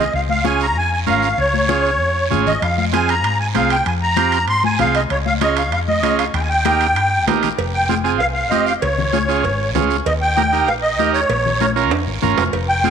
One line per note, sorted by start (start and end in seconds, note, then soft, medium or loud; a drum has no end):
0.00 0.13 D#5 medium
0.13 0.75 C#2 loud
0.13 0.22 F5 medium
0.13 high conga soft
0.13 long guiro medium
0.29 0.44 F5 medium
0.29 high conga medium
0.44 0.66 C#4 medium
0.44 0.66 F4 medium
0.44 0.67 G#4 medium
0.44 0.60 G#5 medium
0.44 high conga loud
0.44 short guiro medium
0.60 0.77 A#5 medium
0.60 short guiro medium
0.75 1.08 F2 medium
0.75 0.91 G#5 loud
0.75 high conga soft
0.75 long guiro medium
0.93 1.00 G#5 medium
1.07 1.32 G#1 medium
1.07 1.29 C#4 medium
1.07 1.29 F4 medium
1.07 1.29 A#4 medium
1.07 1.40 F5 medium
1.07 high conga medium
1.07 short guiro medium
1.23 short guiro medium
1.38 2.00 C#2 loud
1.38 2.28 C#5 medium
1.38 high conga soft
1.38 long guiro medium
1.54 high conga medium
1.68 1.91 C#4 medium
1.68 1.91 F4 medium
1.68 1.91 G#4 medium
1.68 high conga loud
1.68 short guiro medium
1.85 short guiro medium
2.00 2.32 F2 medium
2.00 high conga soft
2.00 long guiro medium
2.30 2.56 G#1 medium
2.30 2.52 C#4 medium
2.30 2.53 F4 medium
2.30 2.53 G#4 medium
2.30 high conga medium
2.30 low conga medium
2.30 short guiro medium
2.47 2.61 D#5 medium
2.47 low conga medium
2.47 short guiro medium
2.62 3.24 F2 loud
2.62 2.76 F5 medium
2.62 high conga soft
2.62 high timbale medium
2.62 long guiro medium
2.78 2.85 F5 medium
2.78 high conga medium
2.93 3.15 C4 medium
2.93 3.15 F4 medium
2.93 3.15 G#4 medium
2.93 3.09 G#5 medium
2.93 high conga medium
2.93 high timbale medium
2.93 short guiro medium
3.09 3.38 A#5 loud
3.09 high timbale medium
3.09 short guiro medium
3.24 3.57 G#2 medium
3.24 high conga soft
3.24 high timbale medium
3.24 long guiro medium
3.40 3.47 G#5 medium
3.54 3.80 C2 medium
3.54 3.76 C4 medium
3.54 3.77 F4 medium
3.54 3.77 G#4 medium
3.54 3.70 F5 medium
3.54 high conga medium
3.54 high timbale medium
3.54 short guiro medium
3.70 3.86 G5 medium
3.70 high timbale medium
3.70 short guiro medium
3.86 4.49 F2 medium
3.86 3.94 G#5 medium
3.86 high conga soft
3.86 high timbale medium
3.86 long guiro medium
4.02 4.45 A#5 loud
4.16 4.39 C4 medium
4.16 4.39 F4 medium
4.16 4.39 G4 medium
4.16 high conga medium
4.16 high timbale medium
4.16 short guiro medium
4.32 high timbale medium
4.32 short guiro medium
4.48 4.81 G#2 medium
4.48 4.63 C6 loud
4.48 high conga soft
4.48 high timbale medium
4.48 long guiro medium
4.64 4.79 G#5 loud
4.64 high conga medium
4.79 5.04 C2 medium
4.79 5.01 C4 medium
4.79 5.01 F4 medium
4.79 5.01 G#4 medium
4.79 4.94 F5 loud
4.79 high conga medium
4.79 low conga medium
4.79 high timbale medium
4.79 short guiro medium
4.95 5.02 D#5 medium
4.95 high timbale medium
4.95 short guiro medium
5.10 5.72 C#2 loud
5.10 5.18 C#5 medium
5.10 high conga soft
5.10 high timbale medium
5.10 long guiro medium
5.26 5.33 F5 loud
5.26 high conga medium
5.41 5.63 C#4 medium
5.41 5.63 F4 medium
5.41 5.63 G#4 medium
5.41 5.56 D#5 medium
5.41 high conga loud
5.41 high timbale medium
5.41 short guiro medium
5.57 5.71 F5 medium
5.57 high timbale medium
5.57 short guiro medium
5.72 6.03 F2 medium
5.72 5.80 F5 medium
5.72 high conga soft
5.72 high timbale medium
5.72 long guiro medium
5.88 6.17 D#5 medium
5.88 high conga medium
6.03 6.28 C#2 medium
6.03 6.25 C#4 medium
6.03 6.25 F4 medium
6.03 6.25 G#4 medium
6.03 high conga medium
6.03 high timbale medium
6.03 short guiro medium
6.19 6.26 F5 medium
6.19 high timbale medium
6.19 short guiro medium
6.34 6.96 D#2 loud
6.34 6.41 G5 medium
6.34 high conga soft
6.34 high timbale medium
6.34 long guiro medium
6.41 6.48 G#5 medium
6.49 7.24 G5 loud
6.65 6.87 A#3 medium
6.65 6.87 D#4 medium
6.65 6.87 G4 medium
6.65 high conga loud
6.65 high timbale medium
6.65 short guiro medium
6.81 high timbale medium
6.81 short guiro medium
6.96 7.27 G2 medium
6.96 high conga soft
6.96 high timbale medium
6.96 long guiro medium
7.27 7.52 A#1 medium
7.27 7.49 A#3 medium
7.27 7.49 D#4 medium
7.27 7.49 G4 medium
7.27 high conga medium
7.27 low conga medium
7.27 high timbale medium
7.27 low timbale medium
7.27 short guiro medium
7.43 low conga medium
7.43 high timbale medium
7.43 short guiro medium
7.58 8.20 F1 medium
7.58 cowbell loud
7.58 high conga soft
7.58 long guiro medium
7.74 7.88 G5 loud
7.89 7.95 C4 medium
7.89 7.95 F4 medium
7.89 7.95 G#4 medium
7.89 7.96 G5 medium
7.89 high conga medium
7.89 short guiro medium
8.04 8.21 C4 medium
8.04 8.21 F4 medium
8.04 8.21 G#4 medium
8.04 8.11 G#5 medium
8.04 short guiro medium
8.19 8.51 C2 medium
8.19 8.26 F5 loud
8.19 cowbell medium
8.19 high conga soft
8.19 long guiro medium
8.34 8.51 F5 medium
8.50 8.76 F1 medium
8.50 8.73 C4 medium
8.50 8.73 F4 medium
8.50 8.73 G4 medium
8.50 8.65 D#5 medium
8.50 high conga medium
8.50 short guiro medium
8.67 8.74 F5 medium
8.67 short guiro medium
8.81 9.45 C#2 medium
8.81 9.70 C#5 medium
8.81 cowbell loud
8.81 high conga soft
8.81 long guiro medium
8.98 low conga medium
9.13 9.18 C#4 medium
9.13 9.19 F4 medium
9.13 9.19 G#4 medium
9.13 high conga medium
9.13 short guiro medium
9.28 9.45 C#4 medium
9.28 9.45 F4 medium
9.28 9.45 G#4 medium
9.28 short guiro medium
9.44 9.75 G#1 medium
9.44 cowbell medium
9.44 high conga soft
9.44 long guiro medium
9.75 10.00 C#2 medium
9.75 9.97 C#4 medium
9.75 9.97 F4 medium
9.75 9.97 G#4 medium
9.75 high conga medium
9.75 low conga medium
9.75 low timbale medium
9.75 short guiro medium
9.91 short guiro medium
10.06 10.68 D#2 loud
10.06 10.13 D#5 medium
10.06 cowbell loud
10.06 high conga soft
10.06 long guiro medium
10.22 10.69 G5 loud
10.37 10.42 D#4 medium
10.37 10.42 G4 medium
10.37 10.43 A#4 medium
10.37 high conga medium
10.37 short guiro medium
10.52 10.69 D#4 medium
10.52 10.69 G4 medium
10.52 10.69 A#4 medium
10.52 short guiro medium
10.67 10.99 A#1 medium
10.67 10.74 F5 loud
10.67 cowbell medium
10.67 high conga soft
10.67 long guiro medium
10.82 11.11 D#5 medium
10.99 11.23 D#2 medium
10.99 11.20 D#4 medium
10.99 11.20 G4 medium
10.99 11.21 A#4 medium
10.99 high conga medium
10.99 short guiro medium
11.13 11.71 C#5 medium
11.13 short guiro medium
11.29 11.91 A#1 loud
11.29 cowbell loud
11.29 high conga soft
11.29 long guiro medium
11.46 low conga medium
11.60 11.66 C#4 loud
11.60 11.66 F4 medium
11.60 11.66 A#4 loud
11.60 high conga medium
11.60 short guiro medium
11.76 11.92 C#4 medium
11.76 11.92 F4 medium
11.76 11.92 A#4 medium
11.76 short guiro medium
11.91 12.06 F2 medium
11.91 cowbell medium
11.91 high timbale loud
11.91 long guiro medium
12.06 12.20 G#1 medium
12.22 12.36 G1 medium
12.22 12.44 C#4 medium
12.22 12.44 F4 medium
12.22 12.44 A#4 medium
12.22 high conga medium
12.22 low conga medium
12.22 short guiro medium
12.37 12.51 F1 medium
12.37 low timbale loud
12.37 short guiro medium
12.53 12.90 F1 loud
12.53 cowbell loud
12.53 high conga soft
12.53 long guiro medium
12.68 12.90 G5 loud
12.84 12.89 C4 medium
12.84 12.90 F4 medium
12.84 12.90 G#4 medium
12.84 high conga medium
12.84 short guiro medium